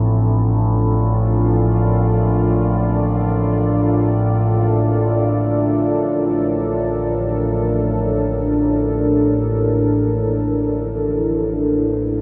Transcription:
Already playing: A1 A2 F3 C4 D4 F4 A4 D5
0.66 A#4
8.57 E4

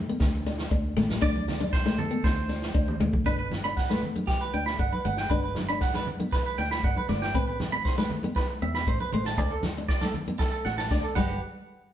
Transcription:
0.09 B3
0.20 D2, kick, snare, low conga, maracas
0.46 D4, snare, maracas
0.58 snare
0.71 D2 D4, kick, maracas
0.96 A1 A3, snare, low conga, maracas
1.09 snare, high conga
1.21 D2 D4 D5, kick, snare, maracas
1.36 high conga
1.48 snare, low conga, maracas
1.60 D4, high conga
1.73 C5, kick, snare, maracas
1.86 A3, snare
1.98 A4, high conga, low conga
2.11 B3
2.24 D2 C5, kick, snare, low conga, maracas
2.49 D4, snare, maracas
2.62 snare
2.74 D2 D4, kick, maracas
2.88 mid tom
3.00 D2 A3, mid tom, low conga, maracas
3.13 kick, high conga
3.26 G1 D4 B4, kick, snare, low conga, maracas
3.39 B4
3.51 snare, high conga, low conga, maracas
3.64 D4 B5
3.77 F#5, kick, snare, maracas
3.89 A3 B4, snare, high conga
4.03 low conga, maracas
4.16 B3, high conga
4.27 G4, kick, snare, maracas
4.41 B4
4.54 D2 D4 G5, maracas
4.66 B5, snare
4.79 G1 D4 F#5, kick, maracas
4.92 B4, high conga
5.05 G1 A3 F#5, low conga, maracas
5.17 G5, snare
5.30 G1 D4 B4, kick, low conga, maracas
5.43 B4
5.55 snare, high conga, low conga, maracas
5.69 D4 B5
5.81 F#5, kick, snare, maracas
5.94 F#3 B4, snare, high conga
6.07 low conga
6.20 B3, high conga
6.32 B4, kick, snare, maracas
6.46 B4
6.58 D2 D4 G5, snare, maracas
6.71 B5, snare
6.83 G1 D4 F#5, kick, maracas
6.96 B4, high conga
7.09 G1 A3 D5, snare, low conga, maracas
7.22 G5, snare
7.34 A1 C4 B4, kick, low conga, maracas
7.47 B4
7.60 snare, high conga, low conga, maracas
7.72 C4 B5
7.85 C5, kick, snare, maracas
7.98 A3 B4, snare, high conga
8.10 low conga, maracas
8.23 B3, high conga
8.36 B4, kick, snare, maracas
8.49 muted clean electric guitar stroke
8.62 E2 C4 E5
8.74 B5, snare
8.87 A1 C4 C5, kick, maracas
9.00 B4, high conga
9.13 A1 A3 C5, low conga, maracas
9.25 A5, snare
9.37 D2 D4 D5, kick, snare, low conga, maracas
9.51 A4
9.63 snare, high conga, low conga, maracas
9.78 D4
9.88 D5, kick, snare, maracas
10.01 A3 A4, snare, high conga
10.14 low conga, maracas
10.28 B3, high conga
10.39 A4, kick, snare, maracas
10.52 A4
10.65 A1 F#4 F#5, snare, maracas
10.78 A5, snare
10.90 D2 D4 D5, kick, snare, maracas
11.03 A4
11.15 G1 G3 G4 B4 F#5, kick, crash, high conga, maracas

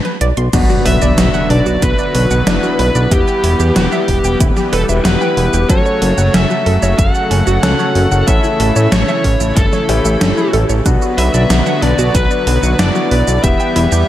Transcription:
0.05 B4, closed hi-hat
0.21 B1 D5, closed hi-hat
0.37 B1 C6, closed hi-hat
0.53 B1 D3 F#3 B3 D4 F#4 B4, kick, closed hi-hat, crash, impact, shaker
0.70 F#4, shaker
0.86 B1 B4 E5, open hi-hat
1.02 B1 D5, shaker
1.18 B1, snare, closed hi-hat, shaker
1.34 F#5, shaker
1.50 B1 D4 D5, open hi-hat
1.66 B1 F#4, shaker
1.82 B1 B4, kick, closed hi-hat, shaker
1.99 D5, shaker
2.15 B1, open hi-hat
2.31 B1 F#5, shaker
2.47 F#1 B3 D4 E4, snare, closed hi-hat, shaker
2.63 F#4, shaker
2.79 B1 B4, open hi-hat
2.95 B1 D5, shaker
3.11 E1 E3 G3 B3 E4 G4 B4, kick, closed hi-hat, shaker
3.28 G5, shaker
3.44 E1 E4, open hi-hat
3.60 E2 G4, shaker
3.76 E1 G4 B4, snare, closed hi-hat, shaker
3.92 E5, shaker
4.08 E1, kick, open hi-hat
4.24 E1 G5, shaker
4.40 D1 E4, kick, closed hi-hat, shaker
4.57 G4, snare, shaker
4.73 E1 A4 B4, open hi-hat
4.89 E1 E5, shaker
5.05 E1 B3 E4 G4 B4, snare, closed hi-hat, shaker
5.21 G5, shaker
5.37 E1 E4, open hi-hat
5.53 E1 G4, shaker
5.69 F#1 C#3 F#3 A3 C#4 F#4 A4 C#5, kick, closed hi-hat, shaker
5.86 C#5, shaker
6.02 F#1, open hi-hat
6.18 F#1 F#5, shaker
6.34 F#1 C#4 E5, snare, closed hi-hat, shaker
6.50 F#4, shaker
6.66 F#1 A4, open hi-hat
6.83 F#1 C#5, shaker
6.99 F#1 F#5, kick, closed hi-hat, shaker
7.15 F#5, shaker
7.31 F#1 C#4, open hi-hat
7.47 F#1 F#4, shaker
7.63 C#2 C#4 F#4 A4 F#5, snare, closed hi-hat, shaker
7.79 C#5, shaker
7.95 F#1, open hi-hat
8.12 F#1 F#5, shaker
8.28 A1 E3 C#4 E4 A4 E5, kick, closed hi-hat, shaker
8.44 E4, shaker
8.60 A1 A4, open hi-hat
8.76 A2 C#5, shaker
8.92 A1 C#5, snare, closed hi-hat, shaker
9.08 E5, shaker
9.24 A1 C#4, kick, open hi-hat
9.40 A1 E4, shaker
9.57 G1 A4, kick, closed hi-hat, shaker
9.73 C#5, snare, shaker
9.89 A1 C#4 E4 G4, open hi-hat
10.05 A1 E5, shaker
10.21 G1 C#4, snare, closed hi-hat, shaker
10.37 E4, shaker
10.53 A1 A4, open hi-hat
10.70 A1 C#5, shaker
10.86 B1 D3 F#3 B3 D4 F#4 B4, kick, closed hi-hat, shaker
11.02 F#4, shaker
11.18 B1 B4 E5, open hi-hat
11.34 B1 D5, shaker
11.50 B1, snare, closed hi-hat, shaker
11.66 F#5, shaker
11.82 B1 D4 D5, open hi-hat
11.99 B1 F#4, shaker
12.15 B1 B4, kick, closed hi-hat, shaker
12.31 D5, shaker
12.47 B1, open hi-hat
12.63 B1 F#5, shaker
12.79 F#1 B3 D4 E4 D5, snare, closed hi-hat, shaker
12.95 F#4, shaker
13.11 B1 B4, open hi-hat
13.28 B1 D5, shaker
13.43 E1 E3 G3 B3 E4 G4 B4 E5, kick, closed hi-hat, shaker
13.60 G5, shaker
13.76 E1 E4, open hi-hat
13.92 E2 G4, shaker

